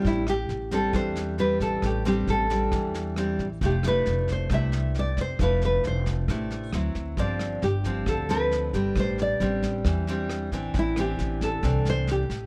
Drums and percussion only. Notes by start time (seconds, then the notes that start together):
0.05 kick, snare
0.27 cross-stick, snare
0.49 snare
0.71 kick, snare
0.93 kick, cross-stick, snare
1.16 snare
1.38 snare
1.60 kick, snare
1.82 kick, cross-stick, snare
2.05 snare
2.27 snare
2.50 kick, snare
2.72 kick, cross-stick, snare
2.94 snare
3.16 cross-stick, snare
3.39 kick, snare
3.61 kick, snare
3.83 cross-stick, snare
4.06 snare
4.28 kick, snare
4.50 kick, cross-stick, snare
4.72 snare
4.94 snare
5.17 kick, snare
5.39 kick, cross-stick, snare
5.62 snare
5.84 snare
6.06 kick, snare
6.28 kick, cross-stick, snare
6.50 snare
6.73 cross-stick, snare
6.95 kick, snare
7.17 kick, snare
7.39 cross-stick, snare
7.62 snare
7.84 kick, snare
8.06 kick, cross-stick, snare
8.29 snare
8.51 snare
8.73 kick, snare
8.96 kick, cross-stick, snare
9.18 snare
9.40 snare
9.62 kick, snare
9.85 kick, cross-stick, snare
10.07 snare
10.29 cross-stick, snare
10.52 kick, snare
10.74 kick, snare
10.96 cross-stick, snare
11.19 snare
11.41 kick, snare
11.63 kick, cross-stick, snare
11.85 snare
12.07 snare
12.30 kick, snare